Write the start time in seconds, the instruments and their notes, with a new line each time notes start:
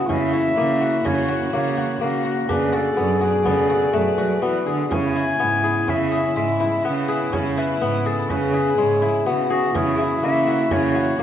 Already playing: kora G#3 B3 E4 G#4, french horn F#4
0.08 cello C#3, string section E3 A#3 F#4, kora C#4, french horn E4, clarinet E5, frame drum
0.33 kora E4, frame drum
0.57 cello C#3, kora A#3, french horn E4
0.81 kora F#4
1.05 cello C#3, kora C#4, clarinet C#5, frame drum
1.29 kora F#4, frame drum
1.53 cello C#3, kora A#3, clarinet C#5
1.77 kora F#4, frame drum
2.00 cello C#3, kora A#3, french horn F#4, clarinet A#4
2.25 kora F#4
2.48 string section B2 A3 D5, cello C#3, kora D4, french horn G#4, clarinet B4, frame drum
2.73 kora F#4, clarinet A4, frame drum
2.97 cello F#2, kora B3
3.21 kora F#4, clarinet G#4, frame drum
3.45 cello C#3, kora B3, clarinet A4, frame drum
3.70 kora F#4, frame drum
3.93 cello F#2, kora A3, clarinet B4, frame drum
4.18 cello F#3, kora F#4, frame drum
4.42 cello E3, kora B3, french horn F#4, frame drum
4.66 cello D3, kora G#4, frame drum
4.90 cello C#3, string section C#3 B3 E4, kora C#4, french horn E4, clarinet G#5, frame drum
5.16 kora E4, frame drum
5.39 cello G#2, kora B3
5.64 kora G#4
5.88 cello C#3, kora C#4, clarinet E5, frame drum
6.12 kora G#4, frame drum
6.36 cello G#2, kora G#3, clarinet E5, frame drum
6.60 kora E4, frame drum
6.84 cello C#3, kora B3, clarinet B4
7.08 kora G#4
7.33 cello C#3, kora C#4, clarinet C#5, frame drum
7.58 kora E4, clarinet B4
7.81 cello G#2, kora B3
8.06 kora G#4, clarinet A4
8.29 cello C#3, kora C#4, french horn G#4, clarinet B4, frame drum
8.54 kora G#4, frame drum
8.78 cello G#2, kora G#3, clarinet C#5, frame drum
9.02 kora E4, frame drum
9.26 cello C#3, kora B3, french horn F#4
9.50 clarinet F#4, kora G#4
9.73 cello C#3, string section E3 A#3 F#4, kora C#4, french horn E4, clarinet G#4, frame drum
9.99 kora E4, frame drum
10.23 cello C#3, kora A#3, clarinet E5
10.47 kora F#4
10.71 cello C#3, kora C#4, clarinet C#5, frame drum
10.95 kora F#4, frame drum
11.19 cello C#3, kora A#3, french horn F#4, frame drum